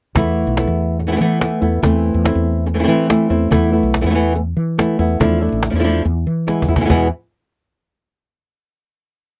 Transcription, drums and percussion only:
0.16 cajon bass medium
0.57 cajon slap medium
1.41 cajon slap medium
1.83 cajon bass medium
2.26 cajon slap medium
3.10 cajon slap loud
3.31 cajon slap soft
3.52 cajon bass medium
3.74 cajon slap soft
3.94 cajon slap medium
4.15 cajon slap soft
4.79 cajon slap loud
5.21 cajon bass medium
5.42 cajon slap soft
5.63 cajon slap medium
6.48 cajon slap medium
6.62 cajon bass medium
6.76 cajon bass medium
6.90 cajon bass medium

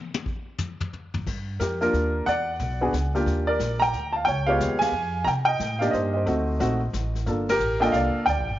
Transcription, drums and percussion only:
0.14 high tom loud
0.26 kick medium
0.58 floor tom loud
0.58 hi-hat pedal medium
0.80 floor tom loud
0.93 floor tom medium
1.14 floor tom loud
1.27 brush sweep soft
1.27 kick medium
1.27 snare soft
1.27 crash medium
1.60 kick soft
1.60 snare medium
1.60 hi-hat pedal medium
1.81 snare soft
1.93 kick soft
1.93 snare soft
2.27 brush sweep soft
2.27 kick soft
2.27 snare soft
2.59 kick soft
2.59 snare soft
2.93 kick soft
2.93 snare medium
2.93 hi-hat pedal medium
3.15 snare soft
3.26 brush sweep soft
3.26 kick soft
3.26 snare soft
3.60 kick soft
3.60 snare medium
3.60 hi-hat pedal medium
3.81 snare soft
3.93 kick soft
3.93 snare soft
4.27 brush sweep soft
4.27 kick soft
4.27 snare soft
4.60 kick soft
4.60 snare medium
4.60 hi-hat pedal medium
4.81 snare medium
4.81 ride medium
5.26 brush sweep soft
5.26 kick soft
5.26 snare soft
5.60 kick soft
5.60 snare medium
5.60 hi-hat pedal medium
5.82 snare medium
5.93 kick soft
5.93 snare soft
6.27 brush sweep soft
6.27 kick soft
6.27 snare soft
6.60 kick soft
6.60 snare soft
6.94 kick soft
6.94 snare medium
6.94 hi-hat pedal medium
7.15 snare soft
7.26 brush sweep soft
7.26 kick soft
7.26 snare soft
7.49 snare medium
7.49 ride medium
7.60 hi-hat pedal soft
7.82 snare soft
7.93 kick soft
7.93 snare soft
8.27 brush sweep soft
8.27 kick soft
8.27 snare soft

